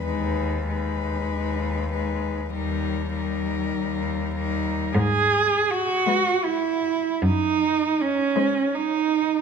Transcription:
<<
  \new Staff \with { instrumentName = "Cello" } { \time 4/4 \key gis \minor \tempo 4 = 52 b'8 b'4 b'8 ais'8 ais'4 ais'8 | r4 b'4 r4 bis'4 | }
  \new Staff \with { instrumentName = "Cello" } { \time 4/4 \key gis \minor dis'8 dis'4 dis'8 dis'8 dis'4 dis'8 | \tuplet 3/2 { gis'4 fis'8~ fis'8 e'4 dis'4 cis'8~ cis'8 dis'4 } | }
  \new Staff \with { instrumentName = "Cello" } { \clef bass \time 4/4 \key gis \minor gis8 gis4 gis8 g8 g4 g8 | r4 gis4 r4 gis4 | }
  \new Staff \with { instrumentName = "Cello" } { \clef bass \time 4/4 \key gis \minor dis,4 dis,4 dis,4 dis,4 | gis,4 r4 fis,4 r4 | }
>>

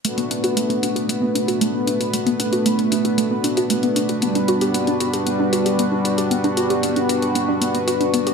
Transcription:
<<
  \new Staff \with { instrumentName = "Analog synth pad" } { \time 4/4 \key b \minor \tempo 4 = 115 << { <a b'>1~ | <a b'>1 | <g b'>1~ | <g b'>1 | } \\ { <b d' fis'>1~ | <b d' fis'>1~ | <b d' fis'>1~ | <b d' fis'>1 | } >> }
  \new Staff \with { instrumentName = "Synth arpeggio sound" } { \time 4/4 \key b \minor a16 b16 d'16 fis'16 a16 b16 d'16 fis'16 a16 b16 d'16 fis'16 a16 b16 d'16 fis'16 | a16 b16 d'16 fis'16 a16 b16 d'16 fis'16 a16 b16 d'16 fis'16 a16 b16 d'16 fis'16 | b16 d'16 fis'16 g'16 b16 d'16 fis'16 g'16 b16 d'16 fis'16 g'16 b16 d'16 fis'16 g'16 | b16 d'16 fis'16 g'16 b16 d'16 fis'16 g'16 b16 d'16 b16 b16 fis'16 d'16 b16 g'16 | }
  \new DrumStaff \with { instrumentName = "Drums" } \drummode { \time 4/4 hh16 hh16 hh16 hh16 hh16 hh16 hh16 hh16 hh8 hh16 hh16 hh8 hh16 hh16 | hh16 hh16 hh16 hh16 hh16 hh16 hh16 hh16 hh8 hh16 hh16 hh16 hh16 hh16 hh16 | hh16 hh16 hh16 hh16 hh16 hh16 hh16 hh16 hh8 hh16 hh16 hh8 hh16 hh16 | hh16 hh16 hh16 hh16 hh16 hh16 hh16 hh16 hh8 hh16 hh16 hh16 hh16 hh16 hh16 | }
>>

